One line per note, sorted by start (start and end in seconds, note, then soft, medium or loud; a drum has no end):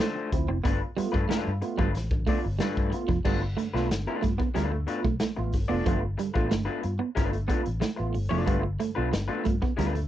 0.00 0.16 D3 medium
0.00 0.29 A3 medium
0.00 0.30 D4 medium
0.00 0.30 F4 medium
0.00 0.30 C5 medium
0.00 snare loud
0.00 closed hi-hat medium
0.16 muted clean electric guitar stroke soft
0.32 0.47 D2 medium
0.32 0.48 F3 medium
0.32 0.49 C4 medium
0.32 0.48 E4 medium
0.32 muted clean electric guitar stroke soft
0.32 kick medium
0.32 closed hi-hat medium
0.48 0.63 F1 loud
0.48 0.58 C4 medium
0.48 0.56 C4 soft
0.48 0.56 E4 soft
0.48 muted clean electric guitar stroke soft
0.64 0.79 G1 medium
0.64 0.81 G2 medium
0.64 0.81 D3 medium
0.64 0.79 A3 medium
0.64 0.73 B3 medium
0.64 0.79 D4 medium
0.64 0.80 F4 medium
0.64 0.80 B4 loud
0.64 kick loud
0.64 closed hi-hat medium
0.81 0.88 B3 soft
0.81 0.88 F4 soft
0.96 1.06 G3 medium
0.96 1.13 A3 medium
0.96 1.13 B3 medium
0.96 1.13 F4 medium
0.96 muted clean electric guitar stroke soft
0.96 muted fingered electric bass stroke soft
0.96 closed hi-hat medium
1.12 1.28 G2 loud
1.12 1.25 A3 medium
1.12 1.25 D4 medium
1.12 1.25 F4 medium
1.12 1.24 B4 medium
1.12 muted clean electric guitar stroke soft
1.12 kick medium
1.29 1.46 G2 medium
1.29 1.46 D3 medium
1.29 1.39 A3 medium
1.29 1.50 A3 medium
1.29 1.50 D4 medium
1.29 1.50 F4 loud
1.29 1.50 B4 medium
1.29 muted fingered electric bass stroke soft
1.29 snare loud
1.29 closed hi-hat medium
1.45 1.61 G2 medium
1.45 muted clean electric guitar stroke soft
1.62 1.78 A3 medium
1.62 1.77 B3 medium
1.62 1.77 F4 medium
1.62 muted clean electric guitar stroke medium
1.62 closed hi-hat medium
1.78 1.96 G1 medium
1.78 1.87 G3 medium
1.78 1.91 A3 medium
1.78 1.85 B3 soft
1.78 1.91 D4 medium
1.78 1.90 F4 medium
1.78 1.85 F4 soft
1.78 1.90 B4 medium
1.78 kick medium
1.94 2.24 A1 medium
1.94 2.02 B3 soft
1.94 2.02 F4 soft
1.94 muted clean electric guitar stroke soft
1.94 snare soft
1.94 closed hi-hat medium
2.11 2.28 G2 medium
2.11 2.28 D3 medium
2.11 kick loud
2.27 2.36 A3 medium
2.27 2.44 A3 medium
2.27 2.39 A3 medium
2.27 2.44 B3 medium
2.27 2.40 D4 medium
2.27 2.44 F4 medium
2.27 2.40 F4 medium
2.27 2.40 D5 medium
2.27 kick loud
2.27 open hi-hat medium
2.45 2.59 G1 loud
2.45 muted clean electric guitar stroke soft
2.59 2.77 G2 medium
2.59 2.77 D3 medium
2.59 2.68 G3 medium
2.59 2.91 A3 medium
2.59 2.91 D4 loud
2.59 2.91 F4 loud
2.59 2.91 B4 loud
2.59 snare loud
2.59 closed hi-hat medium
2.77 2.91 G2 medium
2.77 kick loud
2.92 3.09 A3 medium
2.92 3.09 B3 medium
2.92 3.09 F4 medium
2.92 muted clean electric guitar stroke soft
2.92 closed hi-hat medium
3.08 3.24 F1 medium
3.08 3.18 F3 medium
3.08 3.16 B3 soft
3.08 3.16 F4 soft
3.08 muted clean electric guitar stroke soft
3.08 kick medium
3.25 3.54 G1 medium
3.25 3.34 G3 medium
3.25 3.42 A3 medium
3.25 3.40 A3 medium
3.25 3.42 B3 medium
3.25 3.40 D4 medium
3.25 3.40 F4 medium
3.25 3.42 F4 loud
3.25 3.41 B4 medium
3.25 kick loud
3.25 crash medium
3.42 muted clean electric guitar stroke soft
3.57 3.74 G2 medium
3.57 3.74 D3 medium
3.57 3.66 A3 medium
3.57 muted clean electric guitar stroke soft
3.57 closed hi-hat medium
3.74 3.89 B1 medium
3.74 3.90 A3 medium
3.74 3.86 A3 soft
3.74 3.91 B3 medium
3.74 3.86 D4 medium
3.74 3.86 F4 medium
3.74 3.91 F4 medium
3.74 3.86 B4 medium
3.74 snare soft
3.90 4.05 G1 medium
3.90 4.07 G2 medium
3.90 4.07 D3 medium
3.90 muted clean electric guitar stroke soft
3.90 snare loud
3.90 closed hi-hat loud
4.07 4.23 A3 medium
4.07 4.22 A3 medium
4.07 4.22 B3 medium
4.07 4.22 D4 medium
4.07 4.21 F4 medium
4.07 4.22 F4 medium
4.07 4.23 B4 medium
4.22 4.38 G2 medium
4.22 4.32 A3 medium
4.22 4.30 B3 soft
4.22 4.30 F4 soft
4.22 muted clean electric guitar stroke soft
4.22 kick medium
4.22 closed hi-hat medium
4.38 4.48 B3 medium
4.38 muted clean electric guitar stroke medium
4.38 kick medium
4.54 4.85 D2 medium
4.54 4.65 G3 medium
4.54 4.76 A3 medium
4.54 4.72 B3 medium
4.54 4.71 D4 medium
4.54 4.70 F4 medium
4.54 4.72 F4 medium
4.54 4.70 B4 medium
4.54 snare soft
4.54 closed hi-hat medium
4.71 4.88 G2 medium
4.71 4.88 D3 medium
4.71 muted clean electric guitar stroke soft
4.87 4.99 A3 medium
4.87 5.04 B3 medium
4.87 5.00 D4 medium
4.87 5.00 F4 medium
4.87 5.05 F4 medium
4.87 5.00 B4 medium
4.87 closed hi-hat medium
5.03 5.19 B1 medium
5.03 5.14 A3 medium
5.03 muted clean electric guitar stroke soft
5.03 kick medium
5.20 5.30 A3 medium
5.20 muted clean electric guitar stroke soft
5.20 snare loud
5.20 closed hi-hat medium
5.36 5.52 A1 medium
5.36 5.54 A3 medium
5.36 5.54 B3 medium
5.36 5.54 F4 medium
5.36 muted clean electric guitar stroke soft
5.52 5.69 G1 medium
5.52 5.70 G2 medium
5.52 5.70 D3 medium
5.52 kick medium
5.52 open hi-hat medium
5.68 5.84 F1 medium
5.68 5.84 A3 medium
5.68 5.85 A3 medium
5.68 5.79 B3 medium
5.68 5.85 B3 medium
5.68 5.85 D4 medium
5.68 5.84 F4 medium
5.68 5.85 F4 medium
5.68 5.84 D5 medium
5.85 6.15 G1 medium
5.85 5.96 F3 medium
5.85 6.01 A3 medium
5.85 6.03 A3 medium
5.85 6.03 B3 medium
5.85 6.01 D4 medium
5.85 6.00 F4 medium
5.85 6.03 F4 loud
5.85 6.00 B4 medium
5.85 kick loud
5.85 closed hi-hat medium
6.01 muted clean electric guitar stroke soft
6.18 6.35 G2 medium
6.18 6.35 D3 medium
6.18 6.29 G3 medium
6.18 muted clean electric guitar stroke soft
6.18 closed hi-hat medium
6.34 6.50 A1 medium
6.34 6.52 A3 medium
6.34 6.47 A3 medium
6.34 6.52 B3 medium
6.34 6.47 D4 medium
6.34 6.47 F4 medium
6.34 6.52 F4 medium
6.34 6.46 B4 medium
6.34 muted clean electric guitar stroke soft
6.34 kick medium
6.50 6.66 G1 medium
6.50 6.68 G2 medium
6.50 6.68 D3 medium
6.50 6.61 A3 medium
6.50 muted clean electric guitar stroke soft
6.50 snare loud
6.50 closed hi-hat medium
6.65 6.82 A3 medium
6.65 6.84 A3 medium
6.65 6.84 B3 medium
6.65 6.82 D4 medium
6.65 6.82 F4 medium
6.65 6.84 F4 medium
6.65 6.82 B4 medium
6.65 muted clean electric guitar stroke soft
6.83 6.99 G2 loud
6.83 6.92 B3 soft
6.83 6.92 F4 soft
6.83 muted clean electric guitar stroke soft
6.83 closed hi-hat medium
6.99 7.09 B3 medium
6.99 muted clean electric guitar stroke medium
7.15 7.46 G1 medium
7.15 7.37 A3 medium
7.15 7.33 B3 medium
7.15 7.31 D4 loud
7.15 7.31 F4 medium
7.15 7.34 F4 medium
7.15 7.30 B4 loud
7.15 kick medium
7.15 snare soft
7.15 closed hi-hat medium
7.31 7.50 G2 medium
7.31 7.50 D3 medium
7.31 muted clean electric guitar stroke soft
7.31 closed hi-hat medium
7.48 7.61 A3 medium
7.48 7.58 B3 medium
7.48 7.66 B3 medium
7.48 7.61 D4 medium
7.48 7.61 F4 medium
7.48 7.66 F4 medium
7.48 7.61 B4 medium
7.48 kick medium
7.48 closed hi-hat medium
7.64 7.81 A1 medium
7.64 muted clean electric guitar stroke soft
7.64 closed hi-hat soft
7.80 7.91 A3 medium
7.80 muted clean electric guitar stroke soft
7.80 snare loud
7.80 closed hi-hat medium
7.96 8.14 A1 medium
7.96 8.15 A3 medium
7.96 8.15 B3 medium
7.96 8.15 F4 medium
7.96 muted clean electric guitar stroke soft
8.14 8.30 G1 loud
8.14 8.31 G2 medium
8.14 8.31 D3 medium
8.14 muted clean electric guitar stroke soft
8.14 open hi-hat medium
8.29 8.48 F1 loud
8.29 8.40 F3 medium
8.29 8.45 A3 medium
8.29 8.45 B3 medium
8.29 8.45 D4 medium
8.29 8.45 F4 medium
8.29 8.46 F4 medium
8.29 8.46 D5 medium
8.46 8.77 G1 medium
8.46 8.56 G3 medium
8.46 8.62 A3 loud
8.46 8.63 A3 medium
8.46 8.64 B3 medium
8.46 8.62 D4 loud
8.46 8.62 F4 loud
8.46 8.64 F4 medium
8.46 8.61 B4 medium
8.46 kick loud
8.46 closed hi-hat medium
8.62 muted clean electric guitar stroke medium
8.80 8.97 G2 medium
8.80 8.97 D3 medium
8.80 8.90 A3 medium
8.80 muted clean electric guitar stroke soft
8.80 closed hi-hat medium
8.95 9.12 B1 medium
8.95 9.08 A3 medium
8.95 9.13 A3 medium
8.95 9.13 B3 medium
8.95 9.08 D4 medium
8.95 9.08 F4 medium
8.95 9.13 F4 medium
8.95 9.08 B4 medium
9.12 9.28 G1 medium
9.12 9.30 G2 medium
9.12 9.30 D3 medium
9.12 muted clean electric guitar stroke medium
9.12 snare loud
9.12 closed hi-hat loud
9.28 9.46 A3 medium
9.28 9.43 A3 medium
9.28 9.45 B3 medium
9.28 9.43 D4 medium
9.28 9.44 F4 medium
9.28 9.45 F4 medium
9.28 9.44 B4 medium
9.44 9.61 G2 loud
9.44 9.55 A3 medium
9.44 9.53 B3 soft
9.44 9.53 F4 soft
9.44 muted clean electric guitar stroke soft
9.44 kick loud
9.44 closed hi-hat medium
9.62 9.72 B3 medium
9.62 muted clean electric guitar stroke soft
9.62 kick loud
9.77 10.07 D2 medium
9.77 9.88 G3 medium
9.77 9.98 A3 medium
9.77 9.95 B3 medium
9.77 9.94 D4 medium
9.77 9.93 F4 medium
9.77 9.95 F4 medium
9.77 9.93 B4 medium
9.77 snare soft
9.77 closed hi-hat medium
9.94 10.08 G2 medium
9.94 10.08 D3 medium
9.94 muted clean electric guitar stroke soft
9.94 closed hi-hat medium